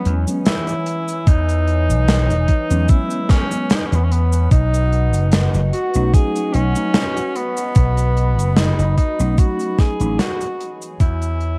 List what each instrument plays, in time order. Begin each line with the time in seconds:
Already playing: ambient pad E3 B4 C#5 G#5, tine electric piano F#3 G#3 B3 C#4, tenor saxophone B3
0.05 slap bass E2, closed hi-hat
0.27 tine electric piano F#3 G#3 B3 C#4, closed hi-hat, cabasa
0.45 tenor saxophone E4, snare, closed hi-hat, cabasa
0.67 closed hi-hat, cabasa
0.86 closed hi-hat
1.08 closed hi-hat, cabasa
1.27 slap bass E2, tenor saxophone D#4, kick, closed hi-hat, cabasa
1.49 closed hi-hat, cabasa
1.67 closed hi-hat
1.90 slap bass B1, closed hi-hat, cabasa
2.08 snare, closed hi-hat, cabasa
2.30 slap bass E1, closed hi-hat, cabasa
2.48 kick, closed hi-hat
2.70 slap bass E2, tine electric piano F#3 G#3 B3 C#4, closed hi-hat, cabasa
2.88 tenor saxophone E4, kick, closed hi-hat, cabasa
3.10 closed hi-hat, cabasa
3.29 tenor saxophone C#4, kick, snare, closed hi-hat
3.50 tine electric piano F#3 G#3 B3 C#4, closed hi-hat, cabasa
3.70 snare, closed hi-hat, cabasa
3.76 tenor saxophone D#4
3.86 tenor saxophone C#4
3.92 slap bass E2, tenor saxophone B3, closed hi-hat, cabasa
4.04 tenor saxophone C#4
4.12 tenor saxophone B3, closed hi-hat
4.33 closed hi-hat, cabasa
4.51 slap bass B1, tenor saxophone D#4, ambient pad F#4 D#5 F#5, kick, closed hi-hat, cabasa
4.74 closed hi-hat, cabasa
4.93 closed hi-hat
5.14 slap bass F#1, closed hi-hat, cabasa
5.32 snare, closed hi-hat, cabasa
5.54 slap bass F#1, closed hi-hat, cabasa
5.73 tenor saxophone F#4, closed hi-hat
5.94 slap bass B1, tine electric piano F#3 A3 C#4 D#4, closed hi-hat, cabasa
6.14 tenor saxophone G#4, kick, closed hi-hat, cabasa
6.36 closed hi-hat, cabasa
6.54 slap bass B1, tenor saxophone C#4, closed hi-hat
6.75 tine electric piano F#3 A3 C#4 D#4, closed hi-hat, cabasa
6.94 snare, closed hi-hat, cabasa
7.17 closed hi-hat, cabasa
7.35 tenor saxophone B3, closed hi-hat
7.57 closed hi-hat, cabasa
7.75 slap bass B1, ambient pad B5, kick, closed hi-hat, cabasa
7.97 closed hi-hat, cabasa
8.17 closed hi-hat
8.38 slap bass F#1, closed hi-hat, cabasa
8.57 tenor saxophone D#4, snare, closed hi-hat, cabasa
8.79 slap bass F#1, closed hi-hat, cabasa
8.97 tenor saxophone D#4, kick, closed hi-hat
9.19 slap bass B1, tine electric piano F#3 A3 C#4 D#4, closed hi-hat, cabasa
9.38 tenor saxophone F#4, kick, closed hi-hat, cabasa
9.59 closed hi-hat, cabasa
9.78 tenor saxophone G#4, kick, snare, closed hi-hat
9.99 slap bass A1, tine electric piano F#3 A3 C#4 D#4, closed hi-hat, cabasa
10.19 tenor saxophone F#4, snare, closed hi-hat, cabasa
10.41 closed hi-hat, cabasa
10.60 ambient pad E3 C#5 G#5, closed hi-hat
10.82 closed hi-hat, cabasa
11.00 slap bass E2, tenor saxophone E4, kick, closed hi-hat, cabasa
11.22 closed hi-hat, cabasa
11.41 closed hi-hat